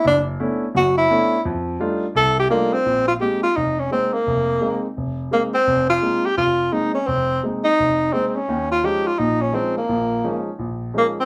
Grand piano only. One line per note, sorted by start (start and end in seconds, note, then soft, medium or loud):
0.05 0.35 F#1 medium
0.40 0.63 A3 medium
0.40 0.63 B3 medium
0.40 0.63 C#4 medium
0.40 0.63 D4 medium
0.40 0.63 E4 medium
0.75 1.05 F#1 medium
0.75 1.05 F#2 medium
1.10 1.34 A3 medium
1.10 1.34 B3 medium
1.10 1.34 C#4 medium
1.10 1.34 D4 soft
1.10 1.34 E4 medium
1.45 1.75 F2 medium
1.80 2.03 G3 medium
1.80 2.03 A3 medium
1.80 2.04 D4 medium
1.80 2.04 D#4 medium
1.80 2.04 F4 medium
2.15 2.45 C2 medium
2.50 2.74 G3 medium
2.50 2.74 A3 medium
2.50 2.74 D4 medium
2.50 2.74 D#4 medium
2.50 2.74 F4 medium
2.86 3.16 A#1 medium
3.20 3.44 G#3 soft
3.20 3.44 A#3 soft
3.20 3.44 C4 soft
3.20 3.45 D#4 medium
3.57 3.86 F1 medium
3.91 4.14 G#3 soft
3.91 4.15 A#3 soft
3.91 4.15 C4 soft
3.91 4.15 D#4 medium
4.27 4.57 F1 medium
4.61 4.85 G#3 medium
4.61 4.85 A#3 soft
4.61 4.85 C4 soft
4.61 4.85 D#4 medium
4.97 5.27 F1 medium
5.31 5.55 G#3 soft
5.31 5.55 A#3 soft
5.31 5.55 C4 soft
5.31 5.55 D#4 medium
5.67 5.97 F1 medium
6.02 6.25 G#3 soft
6.02 6.26 A#3 soft
6.02 6.26 C4 soft
6.02 6.26 D#4 medium
6.37 6.67 F1 medium
6.72 6.96 G#3 soft
6.72 6.96 A#3 soft
6.72 6.96 C4 soft
6.72 6.96 D#4 medium
7.08 7.38 F1 medium
7.43 7.66 G#3 soft
7.43 7.67 A#3 soft
7.43 7.67 C4 soft
7.43 7.67 D#4 medium
7.79 8.09 F1 medium
8.13 8.37 G#3 soft
8.13 8.37 A#3 soft
8.13 8.37 C4 soft
8.13 8.37 D#4 medium
8.48 8.78 D#2 medium
8.48 8.79 D#3 medium
8.83 9.07 F3 soft
8.83 9.07 G#3 soft
8.83 9.07 C#4 soft
8.83 9.07 D#4 medium
9.19 9.49 A#1 medium
9.19 9.49 A#2 medium
9.53 9.77 F3 soft
9.53 9.77 G#3 soft
9.53 9.77 C#4 soft
9.53 9.77 D#4 medium
9.89 10.19 A#1 medium
9.89 10.19 A#2 medium
10.24 10.48 F3 medium
10.24 10.48 G#3 soft
10.24 10.48 C#4 soft
10.24 10.48 D#4 medium
10.59 10.89 A#1 medium
10.94 11.18 F3 soft
10.94 11.18 G#3 soft
10.94 11.18 C#4 soft
10.94 11.18 D#4 medium